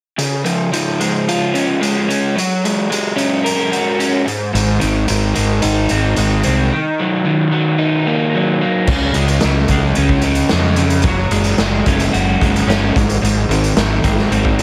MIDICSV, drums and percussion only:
0, 0, Header, 1, 2, 480
1, 0, Start_track
1, 0, Key_signature, -5, "major"
1, 0, Tempo, 543478
1, 163, Time_signature, 4, 2, 24, 8
1, 12919, End_track
2, 0, Start_track
2, 0, Title_t, "Drums"
2, 165, Note_on_c, 9, 42, 73
2, 254, Note_off_c, 9, 42, 0
2, 404, Note_on_c, 9, 42, 52
2, 492, Note_off_c, 9, 42, 0
2, 650, Note_on_c, 9, 42, 75
2, 738, Note_off_c, 9, 42, 0
2, 890, Note_on_c, 9, 42, 60
2, 979, Note_off_c, 9, 42, 0
2, 1137, Note_on_c, 9, 42, 71
2, 1225, Note_off_c, 9, 42, 0
2, 1371, Note_on_c, 9, 42, 56
2, 1460, Note_off_c, 9, 42, 0
2, 1616, Note_on_c, 9, 42, 71
2, 1704, Note_off_c, 9, 42, 0
2, 1859, Note_on_c, 9, 42, 54
2, 1948, Note_off_c, 9, 42, 0
2, 2106, Note_on_c, 9, 42, 73
2, 2194, Note_off_c, 9, 42, 0
2, 2343, Note_on_c, 9, 42, 54
2, 2431, Note_off_c, 9, 42, 0
2, 2580, Note_on_c, 9, 42, 73
2, 2668, Note_off_c, 9, 42, 0
2, 2811, Note_on_c, 9, 42, 55
2, 2899, Note_off_c, 9, 42, 0
2, 3055, Note_on_c, 9, 42, 76
2, 3144, Note_off_c, 9, 42, 0
2, 3294, Note_on_c, 9, 42, 50
2, 3382, Note_off_c, 9, 42, 0
2, 3535, Note_on_c, 9, 42, 69
2, 3623, Note_off_c, 9, 42, 0
2, 3779, Note_on_c, 9, 42, 54
2, 3867, Note_off_c, 9, 42, 0
2, 4020, Note_on_c, 9, 42, 71
2, 4109, Note_off_c, 9, 42, 0
2, 4251, Note_on_c, 9, 42, 59
2, 4339, Note_off_c, 9, 42, 0
2, 4487, Note_on_c, 9, 42, 73
2, 4575, Note_off_c, 9, 42, 0
2, 4729, Note_on_c, 9, 42, 59
2, 4818, Note_off_c, 9, 42, 0
2, 4965, Note_on_c, 9, 42, 81
2, 5054, Note_off_c, 9, 42, 0
2, 5202, Note_on_c, 9, 42, 59
2, 5291, Note_off_c, 9, 42, 0
2, 5445, Note_on_c, 9, 42, 77
2, 5533, Note_off_c, 9, 42, 0
2, 5683, Note_on_c, 9, 42, 59
2, 5771, Note_off_c, 9, 42, 0
2, 7837, Note_on_c, 9, 49, 89
2, 7839, Note_on_c, 9, 36, 96
2, 7925, Note_off_c, 9, 49, 0
2, 7928, Note_off_c, 9, 36, 0
2, 8073, Note_on_c, 9, 42, 59
2, 8161, Note_off_c, 9, 42, 0
2, 8197, Note_on_c, 9, 42, 58
2, 8285, Note_off_c, 9, 42, 0
2, 8309, Note_on_c, 9, 42, 60
2, 8310, Note_on_c, 9, 38, 94
2, 8397, Note_off_c, 9, 42, 0
2, 8398, Note_off_c, 9, 38, 0
2, 8551, Note_on_c, 9, 42, 63
2, 8556, Note_on_c, 9, 36, 79
2, 8639, Note_off_c, 9, 42, 0
2, 8644, Note_off_c, 9, 36, 0
2, 8790, Note_on_c, 9, 42, 63
2, 8879, Note_off_c, 9, 42, 0
2, 8913, Note_on_c, 9, 36, 76
2, 9001, Note_off_c, 9, 36, 0
2, 9024, Note_on_c, 9, 42, 61
2, 9112, Note_off_c, 9, 42, 0
2, 9143, Note_on_c, 9, 42, 66
2, 9231, Note_off_c, 9, 42, 0
2, 9267, Note_on_c, 9, 42, 54
2, 9268, Note_on_c, 9, 38, 97
2, 9355, Note_off_c, 9, 42, 0
2, 9356, Note_off_c, 9, 38, 0
2, 9505, Note_on_c, 9, 42, 61
2, 9594, Note_off_c, 9, 42, 0
2, 9629, Note_on_c, 9, 42, 62
2, 9717, Note_off_c, 9, 42, 0
2, 9733, Note_on_c, 9, 42, 62
2, 9750, Note_on_c, 9, 36, 105
2, 9821, Note_off_c, 9, 42, 0
2, 9838, Note_off_c, 9, 36, 0
2, 9989, Note_on_c, 9, 42, 64
2, 10077, Note_off_c, 9, 42, 0
2, 10104, Note_on_c, 9, 42, 53
2, 10192, Note_off_c, 9, 42, 0
2, 10229, Note_on_c, 9, 42, 58
2, 10230, Note_on_c, 9, 38, 113
2, 10317, Note_off_c, 9, 42, 0
2, 10318, Note_off_c, 9, 38, 0
2, 10475, Note_on_c, 9, 42, 58
2, 10478, Note_on_c, 9, 36, 86
2, 10564, Note_off_c, 9, 42, 0
2, 10566, Note_off_c, 9, 36, 0
2, 10596, Note_on_c, 9, 42, 59
2, 10597, Note_on_c, 9, 38, 33
2, 10684, Note_off_c, 9, 42, 0
2, 10685, Note_off_c, 9, 38, 0
2, 10723, Note_on_c, 9, 42, 52
2, 10812, Note_off_c, 9, 42, 0
2, 10964, Note_on_c, 9, 36, 86
2, 10973, Note_on_c, 9, 42, 56
2, 11053, Note_off_c, 9, 36, 0
2, 11062, Note_off_c, 9, 42, 0
2, 11093, Note_on_c, 9, 42, 54
2, 11181, Note_off_c, 9, 42, 0
2, 11216, Note_on_c, 9, 42, 51
2, 11217, Note_on_c, 9, 38, 104
2, 11304, Note_off_c, 9, 42, 0
2, 11305, Note_off_c, 9, 38, 0
2, 11446, Note_on_c, 9, 36, 96
2, 11453, Note_on_c, 9, 42, 51
2, 11534, Note_off_c, 9, 36, 0
2, 11541, Note_off_c, 9, 42, 0
2, 11566, Note_on_c, 9, 42, 52
2, 11654, Note_off_c, 9, 42, 0
2, 11699, Note_on_c, 9, 42, 59
2, 11788, Note_off_c, 9, 42, 0
2, 11933, Note_on_c, 9, 42, 51
2, 12021, Note_off_c, 9, 42, 0
2, 12046, Note_on_c, 9, 42, 55
2, 12134, Note_off_c, 9, 42, 0
2, 12159, Note_on_c, 9, 42, 61
2, 12160, Note_on_c, 9, 38, 108
2, 12248, Note_off_c, 9, 42, 0
2, 12249, Note_off_c, 9, 38, 0
2, 12400, Note_on_c, 9, 42, 60
2, 12401, Note_on_c, 9, 36, 83
2, 12488, Note_off_c, 9, 42, 0
2, 12489, Note_off_c, 9, 36, 0
2, 12531, Note_on_c, 9, 38, 32
2, 12620, Note_off_c, 9, 38, 0
2, 12647, Note_on_c, 9, 42, 54
2, 12736, Note_off_c, 9, 42, 0
2, 12762, Note_on_c, 9, 36, 75
2, 12850, Note_off_c, 9, 36, 0
2, 12886, Note_on_c, 9, 42, 61
2, 12919, Note_off_c, 9, 42, 0
2, 12919, End_track
0, 0, End_of_file